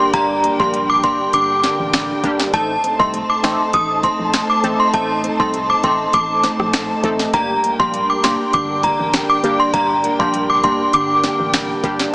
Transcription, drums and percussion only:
0.14 kick, closed hi-hat
0.44 closed hi-hat
0.60 kick
0.74 closed hi-hat
1.03 kick, closed hi-hat
1.33 closed hi-hat
1.64 snare, closed hi-hat
1.93 finger snap, snare, closed hi-hat
2.24 kick, closed hi-hat
2.40 snare
2.54 kick, closed hi-hat
2.84 closed hi-hat
3.00 kick
3.14 closed hi-hat
3.44 finger snap, snare, closed hi-hat
3.73 kick, closed hi-hat
4.03 kick, closed hi-hat
4.33 finger snap, snare, closed hi-hat
4.64 closed hi-hat
4.94 kick, closed hi-hat
5.24 closed hi-hat
5.40 kick
5.54 closed hi-hat
5.83 kick, closed hi-hat
6.13 kick, closed hi-hat
6.44 snare, closed hi-hat
6.60 cross-stick
6.73 finger snap, snare, closed hi-hat
7.04 kick, closed hi-hat
7.19 snare
7.34 kick, closed hi-hat
7.64 closed hi-hat
7.80 kick
7.94 closed hi-hat
8.24 finger snap, snare, closed hi-hat
8.53 kick, closed hi-hat
8.83 kick, closed hi-hat
9.13 finger snap, snare, closed hi-hat
9.44 closed hi-hat
9.74 kick, closed hi-hat
10.04 closed hi-hat
10.20 kick
10.34 closed hi-hat
10.64 kick, closed hi-hat
10.93 closed hi-hat
11.24 snare, closed hi-hat
11.54 finger snap, snare, closed hi-hat
11.84 kick, closed hi-hat
11.99 snare

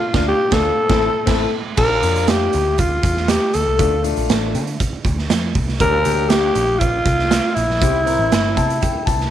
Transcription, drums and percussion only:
0.14 kick, snare
0.52 kick, snare
0.90 kick, snare
1.27 kick, snare, crash
1.77 kick, crash
2.03 closed hi-hat
2.16 closed hi-hat
2.27 snare, closed hi-hat
2.53 closed hi-hat
2.78 kick, closed hi-hat
3.03 kick, closed hi-hat
3.17 snare
3.28 snare, closed hi-hat
3.54 closed hi-hat
3.79 kick, closed hi-hat
4.04 closed hi-hat
4.16 closed hi-hat
4.29 snare, closed hi-hat
4.55 closed hi-hat
4.67 closed hi-hat
4.80 kick, closed hi-hat
5.05 kick, closed hi-hat
5.19 snare
5.30 snare, closed hi-hat
5.55 kick, open hi-hat
5.69 snare
5.80 kick, closed hi-hat
6.05 closed hi-hat
6.30 snare, closed hi-hat
6.55 closed hi-hat
6.81 kick, closed hi-hat
7.06 kick, closed hi-hat
7.19 snare
7.31 snare, closed hi-hat
7.56 closed hi-hat
7.70 snare
7.82 kick, closed hi-hat
8.07 closed hi-hat
8.32 snare, closed hi-hat
8.57 kick, closed hi-hat
8.70 closed hi-hat
8.82 kick, closed hi-hat
9.07 kick, closed hi-hat
9.21 snare

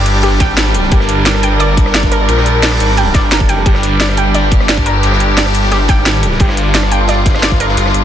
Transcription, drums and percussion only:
0.06 closed hi-hat, ride
0.15 snare
0.23 snare, closed hi-hat, ride
0.40 kick, snare, closed hi-hat, ride
0.57 snare, closed hi-hat, ride
0.74 closed hi-hat, ride
0.83 snare
0.91 kick, closed hi-hat, ride
1.00 cross-stick, snare
1.09 closed hi-hat, ride
1.26 snare, closed hi-hat, ride
1.35 cross-stick
1.43 closed hi-hat, ride
1.60 closed hi-hat, ride
1.77 kick, closed hi-hat, ride
1.86 cross-stick, snare
1.94 snare, closed hi-hat, ride
2.03 kick, snare
2.12 closed hi-hat, ride
2.29 closed hi-hat, ride
2.37 cross-stick, snare
2.46 closed hi-hat, ride
2.63 snare, closed hi-hat, open hi-hat
2.72 cross-stick
2.80 closed hi-hat, ride
2.89 snare
2.97 closed hi-hat, ride
3.15 kick, snare, closed hi-hat, ride
3.32 snare, closed hi-hat
3.40 kick
3.49 closed hi-hat, ride
3.66 kick, closed hi-hat, ride
3.75 cross-stick, snare
3.83 closed hi-hat, ride
4.00 snare, closed hi-hat, ride
4.09 cross-stick
4.17 closed hi-hat, ride
4.34 closed hi-hat, ride
4.51 kick, closed hi-hat, ride
4.60 cross-stick, snare
4.69 snare, closed hi-hat, ride
4.77 kick, snare
4.86 closed hi-hat, ride
5.03 closed hi-hat, ride
5.12 cross-stick, snare
5.20 closed hi-hat, ride
5.37 snare, closed hi-hat, open hi-hat
5.46 cross-stick
5.55 closed hi-hat, ride
5.63 snare
5.71 snare, closed hi-hat, ride
5.89 kick, snare, closed hi-hat, ride
6.06 snare, closed hi-hat, ride
6.23 closed hi-hat, ride
6.32 snare
6.40 kick, closed hi-hat, ride
6.49 cross-stick, snare
6.57 closed hi-hat, ride
6.75 snare, closed hi-hat, ride
6.83 cross-stick
6.92 closed hi-hat, ride
7.08 snare, closed hi-hat, ride
7.26 kick, snare, closed hi-hat, ride
7.34 cross-stick, snare, ride
7.39 snare, ride
7.43 snare, closed hi-hat, ride
7.52 kick, snare
7.60 closed hi-hat, ride
7.69 snare
7.77 closed hi-hat, ride
7.86 cross-stick, snare
7.94 cross-stick, closed hi-hat

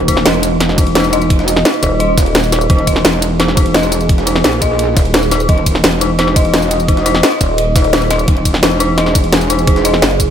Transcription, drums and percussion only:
0.08 kick, closed hi-hat, ride, tambourine
0.17 snare
0.26 snare, closed hi-hat
0.34 closed hi-hat
0.43 closed hi-hat, ride, tambourine
0.60 snare, closed hi-hat
0.69 snare
0.78 kick, closed hi-hat, ride, tambourine
0.87 closed hi-hat
0.95 snare, closed hi-hat
1.04 closed hi-hat, tambourine
1.13 closed hi-hat, ride, tambourine
1.22 closed hi-hat, tambourine
1.30 kick, closed hi-hat
1.39 snare, closed hi-hat
1.48 closed hi-hat, ride, tambourine
1.56 snare
1.65 snare, closed hi-hat
1.74 closed hi-hat
1.83 kick, closed hi-hat, ride, tambourine
2.00 closed hi-hat
2.18 kick, snare, closed hi-hat, ride, tambourine
2.26 closed hi-hat
2.35 snare, closed hi-hat, open hi-hat
2.44 tambourine
2.52 snare, closed hi-hat, ride, tambourine
2.61 closed hi-hat, tambourine
2.70 kick, closed hi-hat
2.79 closed hi-hat
2.87 kick, closed hi-hat, ride, tambourine
2.96 snare
3.05 snare, closed hi-hat
3.13 closed hi-hat
3.22 closed hi-hat, ride, tambourine
3.40 snare, closed hi-hat
3.48 snare
3.57 kick, closed hi-hat, ride, tambourine
3.66 closed hi-hat
3.74 snare, closed hi-hat
3.83 closed hi-hat, tambourine
3.92 closed hi-hat, ride, tambourine
4.01 closed hi-hat, tambourine
4.09 kick, closed hi-hat
4.18 snare, closed hi-hat
4.27 closed hi-hat, ride, tambourine
4.36 snare
4.44 snare, closed hi-hat
4.53 closed hi-hat
4.62 kick, closed hi-hat, ride, tambourine
4.79 closed hi-hat
4.97 kick, snare, closed hi-hat, ride, tambourine
5.05 closed hi-hat
5.14 snare, closed hi-hat, open hi-hat
5.23 tambourine
5.31 snare, closed hi-hat, ride, tambourine
5.40 closed hi-hat, tambourine
5.49 kick, closed hi-hat
5.58 closed hi-hat
5.66 kick, closed hi-hat, ride, tambourine
5.75 snare
5.84 snare, closed hi-hat
5.93 closed hi-hat
6.01 closed hi-hat, ride, tambourine
6.19 snare, closed hi-hat
6.27 snare
6.36 kick, closed hi-hat, ride, tambourine
6.45 closed hi-hat
6.54 snare, closed hi-hat
6.62 closed hi-hat, tambourine
6.71 closed hi-hat, ride, tambourine
6.80 closed hi-hat, tambourine
6.88 kick, closed hi-hat
6.97 snare, closed hi-hat
7.06 closed hi-hat, ride, tambourine
7.15 snare
7.23 snare, closed hi-hat
7.32 closed hi-hat
7.41 kick, closed hi-hat, ride, tambourine
7.58 closed hi-hat
7.76 kick, snare, closed hi-hat, ride, tambourine
7.84 closed hi-hat
7.93 snare, closed hi-hat, open hi-hat
8.02 tambourine
8.11 snare, closed hi-hat, ride, tambourine
8.19 closed hi-hat, tambourine
8.28 kick, closed hi-hat
8.37 closed hi-hat
8.45 kick, closed hi-hat, ride, tambourine
8.54 snare
8.63 snare, closed hi-hat
8.71 closed hi-hat
8.80 closed hi-hat, ride, tambourine
8.98 snare, closed hi-hat
9.06 snare
9.15 kick, closed hi-hat, ride, tambourine
9.24 closed hi-hat
9.33 snare, closed hi-hat
9.41 closed hi-hat, tambourine
9.50 closed hi-hat, ride, tambourine
9.59 closed hi-hat, tambourine
9.67 kick, closed hi-hat
9.76 snare, closed hi-hat
9.85 closed hi-hat, ride, tambourine
9.94 snare
10.02 snare, closed hi-hat
10.11 closed hi-hat
10.20 kick, closed hi-hat, ride, tambourine

